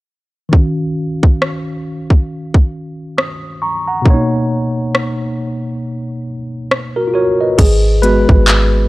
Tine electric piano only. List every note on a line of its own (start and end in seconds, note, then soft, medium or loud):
0.49 4.00 D#3 medium
0.49 4.01 C#4 medium
0.54 4.02 F#4 medium
0.54 3.16 F5 medium
3.18 3.60 D#6 medium
3.62 3.86 A#5 medium
3.62 3.86 C#6 medium
3.88 4.30 F#5 medium
3.88 4.29 A#5 medium
4.02 7.53 B2 medium
4.02 7.54 A#3 medium
4.07 4.14 C#4 medium
4.07 6.24 C#5 medium
4.14 7.59 D#4 medium
6.96 7.13 F#4 medium
6.96 7.14 A#4 medium
7.07 7.14 F4 medium
7.14 7.60 F#4 medium
7.14 7.39 A#4 medium
7.14 7.39 C#5 medium
7.41 7.83 B4 medium
7.41 7.82 D#5 medium
7.58 8.04 G#4 medium
8.02 8.88 G#3 medium
8.02 8.88 B3 medium
8.02 8.88 F#4 medium
8.02 8.87 B4 loud